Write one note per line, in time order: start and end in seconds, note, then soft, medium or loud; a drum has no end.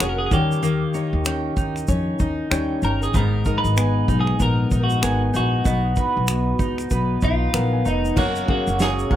0.00 0.26 F1 medium
0.00 0.39 F#3 medium
0.00 0.31 A#3 medium
0.00 0.33 A#3 medium
0.00 0.65 C#4 medium
0.00 0.34 F#4 medium
0.00 0.39 F#4 medium
0.00 0.09 G#4 medium
0.00 0.32 C#5 medium
0.00 0.39 C#5 soft
0.00 0.39 F#5 medium
0.00 finger snap loud
0.00 shaker medium
0.09 0.17 A#4 medium
0.18 0.25 G#4 medium
0.26 1.45 G3 medium
0.26 0.32 G#4 medium
0.31 0.83 D#2 medium
0.31 0.62 D#3 medium
0.31 0.62 A#3 medium
0.31 1.46 D#4 medium
0.31 2.17 G4 medium
0.31 1.46 C#5 medium
0.31 kick loud
0.31 shaker medium
0.52 shaker soft
0.62 4.12 D#3 medium
0.62 3.14 A#3 medium
0.62 shaker medium
0.94 1.56 D#4 medium
0.94 1.87 C#5 medium
0.94 shaker soft
1.13 1.49 D#2 medium
1.25 1.87 C#4 medium
1.25 2.50 G5 medium
1.25 finger snap loud
1.25 shaker medium
1.56 1.83 D#2 medium
1.56 2.19 D#4 medium
1.56 kick medium
1.56 shaker soft
1.76 finger snap soft
1.76 shaker soft
1.88 2.14 F2 medium
1.88 2.50 C#4 medium
1.88 3.22 C#5 medium
1.88 kick medium
1.88 shaker medium
2.19 2.46 D#2 medium
2.19 2.82 D#4 medium
2.19 2.83 D#4 medium
2.19 kick medium
2.19 shaker soft
2.50 2.77 D#2 medium
2.50 3.08 G3 medium
2.50 3.22 C#4 medium
2.50 3.09 D#4 medium
2.50 3.09 C#5 medium
2.50 3.22 G5 medium
2.50 finger snap loud
2.50 shaker medium
2.82 3.08 G1 medium
2.82 3.45 D#4 medium
2.82 4.08 D#4 medium
2.82 3.01 A#4 medium
2.82 shaker soft
3.03 3.16 G#4 medium
3.03 shaker soft
3.13 3.40 G#1 medium
3.13 5.66 G#2 medium
3.13 4.28 G#3 medium
3.13 4.29 B3 medium
3.13 5.65 B3 medium
3.13 3.58 A#4 loud
3.13 4.29 A#5 medium
3.13 kick loud
3.13 shaker medium
3.45 4.08 D#4 medium
3.45 4.39 A#4 medium
3.45 kick medium
3.45 shaker soft
3.58 4.20 B4 loud
3.64 4.00 G#1 medium
3.64 shaker medium
3.77 4.39 B3 medium
3.77 5.01 G#5 medium
3.77 finger snap loud
3.77 shaker medium
4.08 4.34 B1 medium
4.08 4.71 D#4 medium
4.08 kick medium
4.08 shaker soft
4.21 4.41 G#4 medium
4.27 finger snap soft
4.39 4.66 A#1 medium
4.39 5.02 B3 medium
4.39 5.73 A#4 medium
4.39 4.83 A#4 medium
4.39 kick medium
4.39 shaker medium
4.71 4.97 A#1 medium
4.71 5.33 D#4 medium
4.71 5.34 D#4 medium
4.71 kick medium
4.71 shaker soft
4.84 5.22 F#4 medium
4.90 shaker soft
5.01 5.28 G#1 medium
5.01 5.59 G#3 medium
5.01 5.60 B3 medium
5.01 6.28 B3 medium
5.01 5.60 A#4 medium
5.01 5.73 G#5 medium
5.01 finger snap loud
5.01 shaker medium
5.34 5.60 A#1 medium
5.34 6.59 D#4 medium
5.34 5.96 D#4 medium
5.34 7.51 F#4 medium
5.34 shaker medium
5.64 5.91 B1 medium
5.64 6.80 B3 medium
5.64 8.17 B3 medium
5.64 6.80 F#4 medium
5.64 6.81 D#5 medium
5.64 kick loud
5.64 shaker medium
5.96 6.58 D#4 medium
5.96 6.90 B4 medium
5.96 kick medium
5.96 shaker soft
6.17 6.53 B1 medium
6.27 6.89 B3 medium
6.27 finger snap loud
6.27 shaker medium
6.59 6.85 C#2 medium
6.59 7.22 D#4 medium
6.59 7.21 D#4 medium
6.59 kick medium
6.59 shaker soft
6.78 finger snap soft
6.78 shaker soft
6.90 7.17 B1 medium
6.90 7.52 B3 medium
6.90 8.24 B4 medium
6.90 kick medium
6.90 shaker medium
7.21 7.48 B1 medium
7.21 7.84 D#4 medium
7.21 7.85 D#4 medium
7.21 7.88 F4 medium
7.21 7.52 D#5 medium
7.21 kick medium
7.21 shaker soft
7.53 7.80 A#1 medium
7.53 8.11 F#3 medium
7.53 8.11 B3 medium
7.53 8.24 B3 medium
7.53 8.12 A#4 medium
7.53 7.72 F#5 medium
7.53 finger snap loud
7.53 shaker medium
7.73 7.85 G#5 medium
7.85 8.12 F1 medium
7.85 8.24 D#4 medium
7.85 8.25 D#4 medium
7.85 8.19 D#4 medium
7.85 8.15 A#5 medium
7.85 shaker medium
8.05 shaker soft
8.16 8.43 F#1 medium
8.16 9.16 F#3 medium
8.16 8.45 A#3 medium
8.16 9.16 A#3 medium
8.16 9.16 C#4 medium
8.16 8.45 F#4 medium
8.16 8.47 F#4 medium
8.16 9.10 A#4 medium
8.16 8.46 C#5 medium
8.16 9.10 F#5 medium
8.16 kick medium
8.16 crash medium
8.36 shaker soft
8.48 9.05 A#3 medium
8.48 9.16 C#4 medium
8.48 9.06 F#4 medium
8.48 9.16 F#4 medium
8.48 8.82 F#4 medium
8.48 9.06 G#4 medium
8.48 kick medium
8.67 9.03 F#1 medium
8.67 shaker medium
8.80 9.16 F#4 medium
8.80 9.16 G#4 medium
8.80 9.16 C#5 medium
8.80 snare loud
8.80 shaker medium
8.99 shaker soft
9.10 9.16 G#1 medium
9.10 9.16 A#3 medium
9.10 9.16 F#4 medium
9.10 9.16 A#4 medium
9.10 9.16 C#5 medium
9.10 9.16 F#5 medium
9.10 kick medium